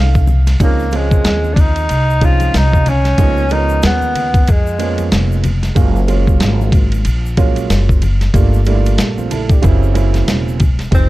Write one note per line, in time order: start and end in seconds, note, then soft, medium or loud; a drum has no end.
0.00 0.57 C2 medium
0.00 0.24 D#3 medium
0.00 0.24 A3 medium
0.00 0.24 C#4 medium
0.00 0.57 F5 medium
0.15 kick medium
0.15 shaker medium
0.27 high conga medium
0.27 low conga medium
0.27 shaker soft
0.47 snare soft
0.47 ride medium
0.47 shaker soft
0.60 1.21 C#2 medium
0.60 0.84 F3 medium
0.60 0.84 G#3 medium
0.60 0.98 A#3 medium
0.60 0.84 C4 medium
0.60 0.84 C#4 medium
0.60 0.84 D#4 medium
0.60 kick loud
0.60 ride medium
0.60 shaker medium
0.79 shaker soft
0.91 1.81 F3 medium
0.91 1.81 G#3 medium
0.91 1.81 C4 medium
0.91 1.81 C#4 medium
0.91 1.81 F4 medium
0.91 ride medium
0.91 shaker soft
0.96 1.55 G#3 medium
1.11 kick medium
1.11 shaker soft
1.25 1.86 D#2 medium
1.25 snare loud
1.25 hi-hat pedal soft
1.25 ride medium
1.25 shaker medium
1.44 high conga medium
1.44 shaker soft
1.54 1.62 D4 medium
1.54 kick medium
1.54 ride medium
1.58 2.26 D#4 loud
1.58 low conga medium
1.58 shaker soft
1.76 ride soft
1.76 shaker soft
1.89 2.51 C2 medium
1.89 ride medium
1.89 shaker medium
2.10 shaker soft
2.21 2.86 F3 medium
2.21 2.87 G#3 medium
2.21 2.87 C4 medium
2.21 2.87 C#4 medium
2.21 2.87 D#4 medium
2.21 2.58 F4 loud
2.21 kick medium
2.21 ride medium
2.21 shaker soft
2.40 ride soft
2.40 high conga medium
2.40 shaker soft
2.54 3.15 C2 medium
2.54 2.90 D#4 medium
2.54 snare medium
2.54 hi-hat pedal soft
2.54 ride medium
2.54 shaker medium
2.73 kick medium
2.73 shaker soft
2.86 3.54 C#4 loud
2.86 ride medium
2.86 high conga medium
2.86 low conga medium
2.86 shaker soft
3.05 snare soft
3.05 ride soft
3.05 shaker soft
3.18 3.80 C#2 medium
3.18 3.42 F3 medium
3.18 3.42 G#3 medium
3.18 3.42 A#3 medium
3.18 3.42 B3 medium
3.18 3.43 D#4 medium
3.18 kick loud
3.18 ride medium
3.18 shaker medium
3.37 shaker soft
3.49 4.39 F3 medium
3.49 4.39 G#3 medium
3.49 4.40 B3 medium
3.49 4.40 C#4 medium
3.49 3.84 D#4 medium
3.49 4.39 A#4 medium
3.49 ride medium
3.49 shaker soft
3.69 shaker soft
3.82 4.44 D#2 medium
3.82 4.52 B3 medium
3.82 snare loud
3.82 hi-hat pedal soft
3.82 ride medium
3.82 shaker medium
4.02 high conga medium
4.02 shaker soft
4.15 ride medium
4.15 low conga medium
4.15 shaker soft
4.34 kick loud
4.34 ride soft
4.34 shaker soft
4.47 5.09 F2 medium
4.47 5.13 G#3 medium
4.47 kick medium
4.47 ride medium
4.47 shaker medium
4.67 shaker soft
4.79 5.44 F3 medium
4.79 5.44 G#3 medium
4.79 5.44 A#3 medium
4.79 5.45 B3 medium
4.79 5.45 C#4 medium
4.79 ride medium
4.79 shaker soft
4.98 ride soft
4.98 high conga medium
4.98 shaker soft
5.12 5.73 F1 medium
5.12 snare medium
5.12 hi-hat pedal soft
5.12 ride medium
5.12 shaker medium
5.32 shaker soft
5.44 ride medium
5.44 high conga medium
5.44 low conga medium
5.44 shaker soft
5.63 snare soft
5.63 ride soft
5.63 shaker soft
5.75 6.37 F#1 loud
5.75 5.99 F#3 medium
5.75 5.99 G#3 medium
5.75 6.00 A#3 medium
5.75 6.00 C#4 medium
5.75 6.00 F4 medium
5.75 kick loud
5.75 ride medium
5.75 shaker medium
5.96 shaker soft
6.07 6.96 F#3 medium
6.07 6.96 G#3 medium
6.07 6.97 A#3 medium
6.07 6.97 C#4 medium
6.07 6.97 F4 medium
6.07 ride medium
6.07 shaker soft
6.27 kick medium
6.27 shaker soft
6.40 7.03 G#1 medium
6.40 snare loud
6.40 hi-hat pedal soft
6.40 ride medium
6.40 shaker medium
6.61 high conga medium
6.61 shaker soft
6.72 kick loud
6.72 ride medium
6.72 low conga medium
6.72 shaker soft
6.92 ride soft
6.92 shaker soft
7.05 7.67 A#1 medium
7.05 ride medium
7.05 shaker medium
7.26 shaker soft
7.37 8.02 F#3 medium
7.37 8.02 G#3 medium
7.37 8.03 A#3 medium
7.37 8.03 C#4 medium
7.37 8.03 F4 medium
7.37 kick medium
7.37 ride medium
7.37 shaker soft
7.56 ride soft
7.56 high conga medium
7.56 shaker soft
7.70 8.31 F#1 medium
7.70 snare loud
7.70 hi-hat pedal soft
7.70 ride medium
7.70 shaker medium
7.89 kick medium
7.89 shaker soft
8.02 ride medium
8.02 high conga medium
8.02 low conga medium
8.02 shaker soft
8.21 snare soft
8.21 ride soft
8.21 shaker soft
8.33 8.96 G1 loud
8.33 8.57 G3 medium
8.33 8.57 A3 medium
8.33 8.58 A#3 medium
8.33 8.58 D4 medium
8.33 8.58 F4 medium
8.33 kick loud
8.33 ride medium
8.33 shaker medium
8.54 shaker soft
8.65 9.55 G3 medium
8.65 9.55 A3 medium
8.65 9.55 A#3 medium
8.65 8.99 D4 medium
8.65 8.75 E4 medium
8.65 ride medium
8.65 shaker soft
8.74 9.03 F4 medium
8.86 ride soft
8.86 shaker soft
8.98 9.60 A#1 medium
8.98 snare loud
8.98 hi-hat pedal soft
8.98 ride medium
8.98 shaker medium
9.18 9.31 C4 medium
9.18 9.30 F4 medium
9.18 high conga medium
9.18 shaker soft
9.31 9.49 E4 medium
9.31 9.49 A4 medium
9.31 ride medium
9.31 low conga medium
9.31 shaker soft
9.49 9.81 D4 medium
9.49 9.81 G4 medium
9.49 kick medium
9.49 ride soft
9.49 shaker soft
9.62 10.25 F#1 loud
9.62 9.90 C#3 medium
9.62 9.90 F#3 medium
9.62 9.90 A#3 medium
9.62 9.90 C4 medium
9.62 9.90 E4 loud
9.62 kick medium
9.62 ride medium
9.62 shaker medium
9.83 shaker soft
9.94 10.60 C#3 medium
9.94 10.60 F#3 medium
9.94 10.60 A#3 medium
9.94 10.60 C4 medium
9.94 10.60 E4 medium
9.94 ride medium
9.94 shaker soft
10.14 snare soft
10.14 ride soft
10.14 high conga medium
10.14 shaker soft
10.28 10.89 E1 medium
10.28 snare medium
10.28 hi-hat pedal soft
10.28 ride medium
10.28 shaker medium
10.48 shaker soft
10.60 kick medium
10.60 ride medium
10.60 high conga medium
10.60 low conga medium
10.60 shaker soft
10.79 snare soft
10.79 ride soft
10.79 shaker soft
10.91 11.09 F1 medium
10.91 11.09 D#3 medium
10.91 11.09 F3 medium
10.91 11.09 G#3 medium
10.91 11.09 C4 medium
10.91 11.08 C4 medium
10.91 11.09 D#4 medium
10.91 kick loud
10.91 ride medium
10.91 shaker medium